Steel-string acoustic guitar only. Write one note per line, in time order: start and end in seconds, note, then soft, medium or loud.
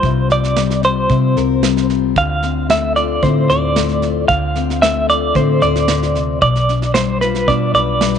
0.00 1.08 C3 medium
0.00 0.56 G3 medium
0.00 0.60 F4 medium
0.30 1.10 C4 medium
0.57 1.61 G3 medium
0.84 1.89 F4 medium
1.09 2.13 C3 medium
1.09 2.43 C4 medium
1.37 2.13 A#4 medium
1.62 2.16 G3 medium
1.90 2.96 F4 medium
2.16 4.29 D3 medium
2.44 3.23 C4 medium
2.70 3.75 A3 medium
2.96 4.03 F4 medium
3.23 4.29 A2 medium
3.23 4.55 C4 medium
3.51 4.27 C5 medium
3.76 4.26 A3 medium
4.04 5.09 F4 medium
4.30 5.88 D3 medium
4.57 5.35 C4 medium
4.83 6.39 A3 medium
5.10 6.45 F4 medium
5.36 6.15 A2 medium
5.36 6.42 C4 medium
5.63 6.39 C5 medium
5.89 6.15 D3 medium
6.16 6.42 C3 medium
6.42 7.47 B2 medium
6.70 7.48 D4 medium
6.96 8.00 G3 medium
7.24 8.19 F4 medium
7.48 8.19 B2 medium
7.48 8.19 D4 medium
7.75 8.19 B4 medium
8.01 8.19 G3 medium